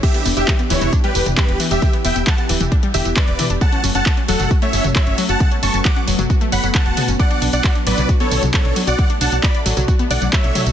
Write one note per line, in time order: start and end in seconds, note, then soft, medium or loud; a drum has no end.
0.03 0.10 D3 loud
0.03 3.58 E3 medium
0.03 3.58 B3 medium
0.03 1.80 D4 medium
0.03 0.24 G4 medium
0.03 3.58 G4 loud
0.03 0.24 E5 loud
0.03 kick loud
0.03 closed hi-hat medium
0.03 tambourine soft
0.03 crash medium
0.14 0.21 B3 medium
0.14 closed hi-hat medium
0.26 0.33 E1 loud
0.26 0.32 B3 medium
0.26 open hi-hat loud
0.26 tambourine medium
0.37 0.44 E1 medium
0.37 0.43 B3 medium
0.37 0.58 G4 medium
0.37 0.58 E5 medium
0.37 closed hi-hat medium
0.37 tambourine soft
0.48 0.55 E3 medium
0.48 kick loud
0.48 clap loud
0.48 closed hi-hat medium
0.48 tambourine soft
0.59 0.63 B3 medium
0.59 closed hi-hat medium
0.70 0.78 D1 loud
0.70 0.80 E3 loud
0.70 0.92 E4 medium
0.70 0.92 C#5 loud
0.70 open hi-hat medium
0.70 tambourine medium
0.81 0.89 E1 medium
0.81 0.91 E3 loud
0.81 closed hi-hat medium
0.81 mid tom medium
0.81 tambourine soft
0.93 0.99 D4 loud
0.93 kick loud
0.93 closed hi-hat medium
0.93 tambourine soft
1.04 1.08 G3 loud
1.04 1.25 G4 medium
1.04 1.25 B4 loud
1.04 closed hi-hat medium
1.15 1.22 E1 loud
1.15 1.25 D3 medium
1.15 open hi-hat loud
1.15 tambourine medium
1.26 1.34 E1 medium
1.26 1.36 E3 medium
1.26 closed hi-hat medium
1.26 mid tom medium
1.26 tambourine soft
1.37 1.44 E3 medium
1.37 1.59 G4 medium
1.37 1.59 B4 medium
1.37 kick loud
1.37 clap loud
1.37 closed hi-hat medium
1.37 tambourine soft
1.49 1.56 E1 medium
1.49 1.53 B3 medium
1.49 closed hi-hat medium
1.60 1.70 E3 loud
1.60 open hi-hat medium
1.60 tambourine medium
1.71 1.78 E1 medium
1.71 1.81 D4 medium
1.71 1.92 G4 medium
1.71 1.92 E5 loud
1.71 closed hi-hat medium
1.71 tambourine soft
1.82 1.89 D3 loud
1.82 3.60 E4 medium
1.82 kick loud
1.82 closed hi-hat medium
1.82 tambourine soft
1.93 2.00 B3 medium
1.93 closed hi-hat medium
2.05 2.12 E1 loud
2.05 2.11 B3 medium
2.05 2.19 E5 medium
2.05 2.19 G5 medium
2.05 open hi-hat loud
2.05 tambourine medium
2.16 2.23 E1 medium
2.16 2.22 B3 medium
2.16 closed hi-hat medium
2.16 tambourine soft
2.27 2.34 E3 medium
2.27 2.41 F#5 medium
2.27 2.41 A5 medium
2.27 kick loud
2.27 clap loud
2.27 closed hi-hat medium
2.27 tambourine soft
2.38 2.42 B3 medium
2.38 closed hi-hat medium
2.49 2.57 D1 loud
2.49 2.59 E3 loud
2.49 open hi-hat loud
2.49 tambourine medium
2.61 2.68 E1 medium
2.61 2.71 E3 loud
2.61 closed hi-hat medium
2.61 mid tom medium
2.61 tambourine soft
2.72 2.78 D4 loud
2.72 kick loud
2.72 closed hi-hat medium
2.72 tambourine soft
2.83 2.87 G3 loud
2.83 closed hi-hat medium
2.94 3.02 E1 loud
2.94 3.04 D3 medium
2.94 3.08 G4 medium
2.94 3.08 E5 medium
2.94 open hi-hat loud
2.94 tambourine medium
3.05 3.13 E1 medium
3.05 3.15 E3 medium
3.05 closed hi-hat medium
3.05 tambourine soft
3.16 3.23 E3 medium
3.16 3.45 B4 medium
3.16 3.45 D5 loud
3.16 kick loud
3.16 clap loud
3.16 closed hi-hat medium
3.16 tambourine soft
3.28 3.35 E1 medium
3.28 3.32 B3 medium
3.28 closed hi-hat medium
3.39 3.49 E3 loud
3.39 open hi-hat loud
3.39 mid tom medium
3.39 tambourine medium
3.50 3.58 E1 medium
3.50 3.60 D4 medium
3.50 closed hi-hat medium
3.50 tambourine soft
3.61 3.68 C#3 loud
3.61 7.16 F#3 medium
3.61 7.16 A3 medium
3.61 5.39 C#4 loud
3.61 3.83 F#5 medium
3.61 3.83 A5 loud
3.61 kick loud
3.61 closed hi-hat medium
3.61 tambourine soft
3.72 3.79 C#4 medium
3.72 closed hi-hat medium
3.84 3.91 F#1 loud
3.84 3.90 C#4 medium
3.84 open hi-hat loud
3.84 tambourine medium
3.95 4.02 F#1 medium
3.95 4.01 C#4 medium
3.95 4.16 F#5 medium
3.95 4.16 A5 medium
3.95 closed hi-hat medium
3.95 tambourine soft
4.06 4.13 F#3 medium
4.06 kick loud
4.06 clap loud
4.06 closed hi-hat medium
4.06 tambourine soft
4.17 4.21 C#4 medium
4.17 closed hi-hat medium
4.28 4.36 E1 loud
4.28 4.38 F#3 loud
4.28 4.50 A4 medium
4.28 4.50 F#5 loud
4.28 open hi-hat loud
4.28 tambourine medium
4.40 4.47 F#1 medium
4.40 4.50 F#3 loud
4.40 closed hi-hat medium
4.40 mid tom medium
4.40 tambourine soft
4.51 4.57 F#4 loud
4.51 kick loud
4.51 closed hi-hat medium
4.51 tambourine soft
4.62 4.66 A3 loud
4.62 4.83 C#5 medium
4.62 4.83 E5 medium
4.62 closed hi-hat medium
4.73 4.81 F#1 loud
4.73 4.83 C#3 medium
4.73 open hi-hat loud
4.73 tambourine medium
4.84 4.92 F#1 medium
4.84 4.94 F#3 medium
4.84 closed hi-hat medium
4.84 mid tom medium
4.84 tambourine soft
4.96 5.02 F#3 medium
4.96 5.17 C#5 medium
4.96 5.17 E5 loud
4.96 kick loud
4.96 clap loud
4.96 closed hi-hat medium
4.96 tambourine soft
5.07 5.14 F#1 medium
5.07 5.11 C#4 medium
5.07 closed hi-hat medium
5.18 5.28 F#3 loud
5.18 open hi-hat loud
5.18 tambourine medium
5.29 5.37 F#1 medium
5.29 5.39 F#4 medium
5.29 5.51 F#5 medium
5.29 5.51 A5 loud
5.29 closed hi-hat medium
5.29 tambourine soft
5.40 5.47 C#3 loud
5.40 8.95 B3 medium
5.40 kick loud
5.40 closed hi-hat medium
5.40 tambourine soft
5.52 5.58 C#4 medium
5.52 closed hi-hat medium
5.63 5.70 F#1 medium
5.63 5.69 C#4 medium
5.63 5.77 A5 medium
5.63 5.77 C#6 medium
5.63 open hi-hat loud
5.63 tambourine medium
5.74 5.81 F#1 medium
5.74 5.81 C#4 medium
5.74 closed hi-hat medium
5.74 tambourine soft
5.85 5.92 F#3 medium
5.85 5.99 F#5 medium
5.85 5.99 D6 medium
5.85 kick loud
5.85 clap loud
5.85 closed hi-hat medium
5.85 tambourine soft
5.96 6.00 C#4 medium
5.96 closed hi-hat medium
6.07 6.15 E1 medium
6.07 6.17 F#3 loud
6.07 open hi-hat loud
6.07 tambourine medium
6.19 6.26 F#1 medium
6.19 6.29 F#3 loud
6.19 closed hi-hat medium
6.19 mid tom medium
6.19 tambourine soft
6.30 6.37 F#4 loud
6.30 kick loud
6.30 closed hi-hat medium
6.30 tambourine soft
6.41 6.45 A3 loud
6.41 closed hi-hat medium
6.52 6.60 F#1 medium
6.52 6.59 C#5 medium
6.52 6.67 F#5 medium
6.52 6.67 B5 medium
6.52 open hi-hat loud
6.52 tambourine medium
6.63 6.71 F#1 medium
6.63 6.67 F#3 loud
6.63 closed hi-hat medium
6.63 tambourine soft
6.75 6.81 C#3 medium
6.75 7.03 F#5 medium
6.75 7.03 A5 medium
6.75 kick loud
6.75 clap loud
6.75 closed hi-hat medium
6.75 tambourine soft
6.86 6.93 E1 medium
6.86 6.96 F#4 medium
6.86 closed hi-hat medium
6.97 7.07 C#3 medium
6.97 open hi-hat medium
6.97 mid tom medium
6.97 tambourine medium
7.08 7.16 F#1 medium
7.08 7.15 C#4 medium
7.08 closed hi-hat medium
7.08 tambourine soft
7.19 7.26 D3 loud
7.19 10.72 F#3 medium
7.19 10.72 D4 loud
7.19 7.41 D5 medium
7.19 7.41 F#5 loud
7.19 kick loud
7.19 closed hi-hat medium
7.19 tambourine soft
7.31 7.37 D4 medium
7.31 closed hi-hat medium
7.42 7.49 B1 medium
7.42 7.48 D4 medium
7.42 open hi-hat loud
7.42 tambourine medium
7.53 7.60 B1 medium
7.53 7.60 D4 medium
7.53 7.74 D5 medium
7.53 7.74 F#5 medium
7.53 closed hi-hat medium
7.53 tambourine soft
7.64 7.71 F#3 medium
7.64 kick loud
7.64 clap loud
7.64 closed hi-hat medium
7.64 tambourine soft
7.75 7.79 D4 medium
7.75 closed hi-hat medium
7.87 7.94 A1 loud
7.87 7.97 F#3 loud
7.87 8.08 B4 medium
7.87 8.08 D5 medium
7.87 open hi-hat loud
7.87 tambourine medium
7.98 8.05 B1 medium
7.98 8.08 F#3 loud
7.98 closed hi-hat medium
7.98 mid tom medium
7.98 tambourine soft
8.09 8.16 F#4 loud
8.09 kick loud
8.09 closed hi-hat medium
8.09 tambourine soft
8.20 8.24 B3 loud
8.20 8.42 A4 medium
8.20 8.42 C#5 medium
8.20 closed hi-hat medium
8.31 8.39 B1 medium
8.31 8.41 D3 medium
8.31 open hi-hat loud
8.31 tambourine medium
8.43 8.50 B1 medium
8.43 8.53 F#3 medium
8.43 closed hi-hat medium
8.43 mid tom medium
8.43 tambourine soft
8.54 8.60 F#3 medium
8.54 8.75 A4 medium
8.54 8.75 C#5 medium
8.54 kick loud
8.54 clap loud
8.54 closed hi-hat medium
8.54 tambourine soft
8.65 8.72 B1 medium
8.65 8.69 D4 medium
8.65 closed hi-hat medium
8.76 8.86 F#3 loud
8.76 open hi-hat medium
8.76 tambourine medium
8.87 8.95 B1 medium
8.87 8.97 F#4 medium
8.87 9.09 D5 medium
8.87 9.09 F#5 loud
8.87 closed hi-hat medium
8.87 tambourine soft
8.99 9.05 D3 loud
8.99 10.72 A3 medium
8.99 kick loud
8.99 closed hi-hat medium
8.99 tambourine soft
9.10 9.16 D4 medium
9.10 closed hi-hat medium
9.21 9.28 B1 loud
9.21 9.28 D4 medium
9.21 9.35 F#5 medium
9.21 9.35 A5 medium
9.21 open hi-hat loud
9.21 tambourine medium
9.32 9.40 B1 medium
9.32 9.39 D4 medium
9.32 closed hi-hat medium
9.32 tambourine soft
9.43 9.50 F#3 medium
9.43 9.58 D5 medium
9.43 9.58 B5 medium
9.43 kick loud
9.43 clap loud
9.43 closed hi-hat medium
9.43 tambourine soft
9.55 9.59 D4 medium
9.55 closed hi-hat medium
9.66 9.73 A1 loud
9.66 9.76 F#3 loud
9.66 open hi-hat medium
9.66 tambourine medium
9.77 9.84 B1 medium
9.77 9.87 F#3 loud
9.77 closed hi-hat medium
9.77 mid tom medium
9.77 tambourine soft
9.88 9.95 F#4 loud
9.88 kick loud
9.88 closed hi-hat medium
9.88 tambourine soft
9.99 10.03 B3 loud
9.99 closed hi-hat medium
10.11 10.18 B1 loud
10.11 10.20 D3 medium
10.11 10.25 D5 medium
10.11 10.25 F#5 medium
10.11 open hi-hat loud
10.11 tambourine medium
10.22 10.29 B1 medium
10.22 10.32 F#3 medium
10.22 closed hi-hat medium
10.22 tambourine soft
10.33 10.40 F#3 medium
10.33 10.61 C#5 medium
10.33 10.61 E5 loud
10.33 kick loud
10.33 clap loud
10.33 closed hi-hat medium
10.33 tambourine soft
10.44 10.52 B1 medium
10.44 10.48 D4 medium
10.44 closed hi-hat medium
10.55 10.65 F#3 loud
10.55 open hi-hat medium
10.55 mid tom medium
10.55 tambourine medium
10.66 10.72 B1 medium
10.66 10.72 F#4 medium
10.66 closed hi-hat medium
10.66 tambourine soft